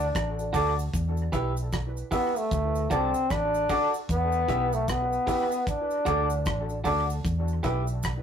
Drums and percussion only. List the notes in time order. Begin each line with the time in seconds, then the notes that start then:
0.15 kick, cross-stick, hi-hat pedal, cabasa
0.39 cabasa
0.54 kick, open hi-hat, cabasa
0.79 cabasa
0.94 kick, hi-hat pedal, cabasa
1.17 cabasa
1.33 kick, closed hi-hat, cabasa
1.57 cabasa
1.72 kick, cross-stick, cabasa
1.97 cabasa
2.12 kick, open hi-hat, cabasa
2.36 cabasa
2.51 kick, hi-hat pedal, cabasa
2.75 cabasa
2.91 kick, closed hi-hat, cabasa
3.14 cabasa
3.30 kick, cross-stick, cabasa
3.54 cabasa
3.69 kick, open hi-hat, cabasa
3.94 cabasa
4.09 kick, hi-hat pedal, cabasa
4.32 cabasa
4.48 kick, closed hi-hat, cabasa
4.73 cabasa
4.88 kick, cross-stick, cabasa
5.12 cabasa
5.27 kick, open hi-hat, cabasa
5.52 cabasa
5.67 kick, hi-hat pedal, cabasa
5.90 cabasa
6.06 kick, closed hi-hat, cabasa
6.30 cabasa
6.46 kick, cross-stick, cabasa
6.69 cabasa
6.85 kick, open hi-hat, cabasa
7.10 cabasa
7.24 kick, hi-hat pedal, cabasa
7.48 cabasa
7.63 kick, closed hi-hat, cabasa
7.87 cabasa
8.03 kick, cross-stick, cabasa